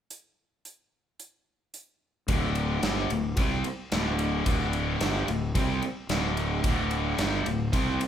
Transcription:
0.10 closed hi-hat medium
0.65 closed hi-hat medium
1.20 closed hi-hat medium
1.74 closed hi-hat medium
2.28 2.79 D1 medium
2.28 2.82 D2 medium
2.28 2.82 A2 loud
2.28 2.82 D3 medium
2.28 kick loud
2.28 ride medium
2.55 ride medium
2.82 3.08 G1 medium
2.82 3.09 G2 medium
2.82 3.10 D3 medium
2.82 3.10 G3 medium
2.82 snare loud
2.82 ride medium
3.10 3.35 D1 medium
3.10 3.32 D2 medium
3.10 3.32 A2 medium
3.10 ride medium
3.37 3.63 C2 medium
3.37 3.64 C3 medium
3.37 3.64 G3 medium
3.37 3.64 C4 loud
3.37 kick loud
3.37 ride medium
3.64 muted fingered electric bass stroke soft
3.64 muted overdriven electric guitar stroke medium
3.64 ride medium
3.92 4.43 D1 medium
3.92 4.45 D2 medium
3.92 4.46 A2 loud
3.92 4.46 D3 loud
3.92 snare loud
3.92 ride medium
4.19 ride medium
4.46 4.97 D1 medium
4.46 5.00 D2 medium
4.46 5.00 A2 medium
4.46 5.00 D3 loud
4.46 kick loud
4.46 ride medium
4.73 ride medium
5.01 5.26 G1 medium
5.01 5.27 G2 medium
5.01 5.27 D3 medium
5.01 5.28 G3 medium
5.01 snare loud
5.01 ride medium
5.28 5.53 D1 medium
5.28 5.50 D2 medium
5.28 5.50 A2 medium
5.28 ride medium
5.55 5.80 C2 medium
5.55 5.81 C3 medium
5.55 5.82 G3 loud
5.55 5.82 C4 loud
5.55 kick loud
5.55 ride medium
5.82 muted fingered electric bass stroke soft
5.82 muted overdriven electric guitar stroke medium
5.82 ride medium
6.09 6.60 D1 loud
6.09 6.63 D2 medium
6.09 6.63 A2 loud
6.09 6.64 D3 medium
6.09 snare loud
6.09 ride medium
6.37 ride medium
6.64 7.15 D1 loud
6.64 7.18 D2 medium
6.64 7.18 A2 medium
6.64 7.18 D3 loud
6.64 kick loud
6.64 ride medium
6.91 ride medium
7.18 7.44 G1 medium
7.18 7.45 G2 medium
7.18 7.45 D3 medium
7.18 7.46 G3 medium
7.18 snare medium
7.18 ride medium
7.46 7.71 D1 medium
7.46 7.68 D2 medium
7.46 7.68 A2 medium
7.46 ride medium
7.73 7.98 C2 medium
7.73 7.99 C3 medium
7.73 7.99 G3 loud
7.73 8.00 C4 loud
7.73 kick medium
7.73 ride medium
8.00 muted fingered electric bass stroke soft
8.00 muted overdriven electric guitar stroke medium
8.00 ride medium

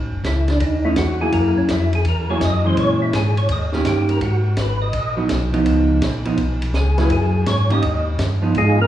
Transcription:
0.00 0.12 A1 soft
0.12 0.23 F#1 medium
0.24 0.59 C#2 medium
0.24 0.49 E4 medium
0.24 kick soft
0.24 snare medium
0.24 hi-hat pedal medium
0.24 ride medium
0.48 0.61 D4 medium
0.48 snare soft
0.48 ride soft
0.60 0.95 D#2 medium
0.60 0.84 D#4 medium
0.60 kick soft
0.60 ride medium
0.85 0.96 A3 medium
0.85 0.96 C#4 medium
0.85 0.97 D#4 medium
0.85 0.97 E4 medium
0.96 1.32 E2 medium
0.96 1.20 F#4 medium
0.96 kick soft
0.96 snare medium
0.96 hi-hat pedal soft
0.96 ride medium
1.21 1.67 F#3 medium
1.21 1.67 A#3 medium
1.21 1.67 E4 medium
1.21 1.33 G#4 medium
1.21 1.67 G#4 medium
1.32 1.55 F#2 medium
1.32 1.56 A#4 medium
1.32 kick soft
1.32 ride medium
1.56 1.62 F#2 soft
1.56 1.69 C#4 medium
1.69 2.04 F2 medium
1.69 1.93 E4 medium
1.69 kick soft
1.69 snare medium
1.69 hi-hat pedal medium
1.69 ride medium
1.93 2.06 G#4 medium
1.93 ride soft
2.04 2.40 E2 medium
2.04 2.30 A#4 medium
2.04 kick soft
2.04 ride medium
2.30 2.40 F#3 medium
2.30 2.41 A#3 medium
2.30 2.41 E4 medium
2.30 2.41 G#4 medium
2.30 2.41 C#5 medium
2.41 2.76 F#2 medium
2.41 2.66 D#5 loud
2.41 kick soft
2.41 snare medium
2.41 hi-hat pedal medium
2.41 ride medium
2.65 3.11 E3 medium
2.65 3.11 G#3 medium
2.65 3.12 C#4 medium
2.65 2.78 C5 medium
2.77 3.12 A#2 medium
2.77 3.01 C#5 loud
2.77 kick soft
2.77 ride medium
3.02 3.13 E4 medium
3.13 3.48 G#2 medium
3.13 3.37 G#4 medium
3.13 kick soft
3.13 snare medium
3.13 hi-hat pedal medium
3.13 ride medium
3.37 3.49 C#5 medium
3.37 ride soft
3.49 3.84 D#2 medium
3.49 3.65 D#5 medium
3.49 kick soft
3.49 ride medium
3.72 4.19 D#3 medium
3.72 4.20 A#3 medium
3.72 4.19 C#4 medium
3.72 4.20 G4 medium
3.72 snare medium
3.85 4.20 G2 medium
3.85 4.09 G4 medium
3.85 kick soft
3.85 snare medium
3.85 hi-hat pedal medium
3.85 ride medium
4.09 4.21 A#4 medium
4.09 ride soft
4.21 4.56 G#2 medium
4.21 4.55 F#4 medium
4.21 kick soft
4.21 ride medium
4.57 4.92 G#1 medium
4.57 4.81 B4 medium
4.57 kick soft
4.57 snare medium
4.57 hi-hat pedal medium
4.57 ride medium
4.82 5.15 D#5 medium
4.93 5.29 A#1 medium
4.93 kick soft
4.93 ride medium
5.17 5.28 F#3 medium
5.17 5.28 B3 medium
5.17 5.29 D#4 medium
5.29 5.65 B1 medium
5.29 kick soft
5.29 snare medium
5.29 hi-hat pedal medium
5.29 ride medium
5.52 5.99 F3 medium
5.52 6.00 B3 medium
5.52 6.00 D#4 medium
5.52 ride soft
5.66 6.01 C#2 medium
5.66 kick soft
5.66 ride medium
6.02 6.37 A#1 medium
6.02 kick soft
6.02 snare medium
6.02 hi-hat pedal medium
6.02 ride medium
6.25 6.37 F3 medium
6.25 6.37 B3 medium
6.25 6.37 D#4 medium
6.25 ride soft
6.37 6.73 B1 medium
6.37 kick soft
6.37 ride medium
6.62 ride medium
6.74 7.09 C#2 medium
6.74 6.98 G#4 medium
6.74 kick soft
6.74 snare medium
6.74 hi-hat pedal soft
6.98 7.09 F#3 medium
6.98 7.09 A#3 medium
6.98 7.10 E4 medium
6.98 7.10 G#4 medium
6.98 7.10 B4 loud
6.98 snare soft
6.98 ride soft
7.10 7.45 F#2 medium
7.10 7.45 G#4 medium
7.10 kick soft
7.10 ride medium
7.46 7.81 G#2 medium
7.46 7.70 C#5 medium
7.46 kick soft
7.46 snare medium
7.46 hi-hat pedal soft
7.46 ride medium
7.70 7.81 D#3 medium
7.70 7.81 A#3 medium
7.70 7.82 C#4 medium
7.70 7.82 G4 medium
7.70 8.05 D#5 medium
7.70 ride soft
7.82 8.18 D#2 medium
7.82 kick soft
7.82 ride medium
8.19 8.54 G2 medium
8.19 kick soft
8.19 snare medium
8.19 hi-hat pedal medium
8.19 ride medium
8.42 8.53 F3 medium
8.42 8.54 B3 medium
8.42 8.54 D#4 medium
8.55 8.87 G#2 medium
8.55 8.80 G#3 medium
8.55 8.80 D#4 medium
8.55 8.80 F4 medium
8.55 8.80 G#4 medium
8.55 kick soft
8.55 ride medium
8.81 8.87 A#3 medium
8.81 8.87 A#4 loud

